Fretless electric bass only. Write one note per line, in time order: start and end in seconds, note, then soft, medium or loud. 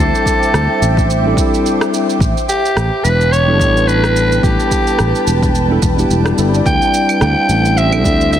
0.00 0.10 D2 medium
0.53 0.66 D2 medium
0.81 1.33 A1 medium
2.20 2.33 A1 medium
2.76 2.89 A1 medium
3.04 3.60 E1 medium
3.60 4.39 A1 medium
4.43 4.55 A1 medium
4.99 5.11 A1 medium
5.27 5.78 E1 medium
5.82 6.04 E1 medium
6.10 6.32 E1 medium
6.38 6.60 G1 medium
6.66 6.78 D2 medium
7.21 7.33 D2 medium
7.49 8.04 A1 medium
8.04 8.40 D2 medium